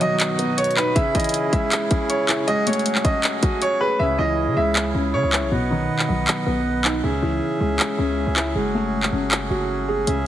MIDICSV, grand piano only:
0, 0, Header, 1, 2, 480
1, 0, Start_track
1, 0, Key_signature, 4, "minor"
1, 0, Tempo, 379747
1, 1212, Time_signature, 4, 2, 24, 8
1, 12981, End_track
2, 0, Start_track
2, 0, Title_t, "Grand piano"
2, 0, Program_c, 0, 0
2, 14, Note_on_c, 0, 75, 82
2, 690, Note_off_c, 0, 75, 0
2, 728, Note_on_c, 0, 73, 88
2, 954, Note_off_c, 0, 73, 0
2, 972, Note_on_c, 0, 71, 86
2, 1196, Note_off_c, 0, 71, 0
2, 1204, Note_on_c, 0, 76, 94
2, 1432, Note_off_c, 0, 76, 0
2, 1457, Note_on_c, 0, 75, 70
2, 1906, Note_off_c, 0, 75, 0
2, 1928, Note_on_c, 0, 76, 77
2, 2607, Note_off_c, 0, 76, 0
2, 2649, Note_on_c, 0, 73, 76
2, 3102, Note_off_c, 0, 73, 0
2, 3128, Note_on_c, 0, 75, 88
2, 3354, Note_off_c, 0, 75, 0
2, 3374, Note_on_c, 0, 73, 76
2, 3824, Note_off_c, 0, 73, 0
2, 3851, Note_on_c, 0, 75, 75
2, 4528, Note_off_c, 0, 75, 0
2, 4575, Note_on_c, 0, 73, 89
2, 4798, Note_off_c, 0, 73, 0
2, 4810, Note_on_c, 0, 71, 86
2, 5035, Note_off_c, 0, 71, 0
2, 5047, Note_on_c, 0, 76, 89
2, 5273, Note_off_c, 0, 76, 0
2, 5290, Note_on_c, 0, 75, 80
2, 5743, Note_off_c, 0, 75, 0
2, 5772, Note_on_c, 0, 76, 84
2, 6449, Note_off_c, 0, 76, 0
2, 6495, Note_on_c, 0, 73, 84
2, 6945, Note_off_c, 0, 73, 0
2, 12981, End_track
0, 0, End_of_file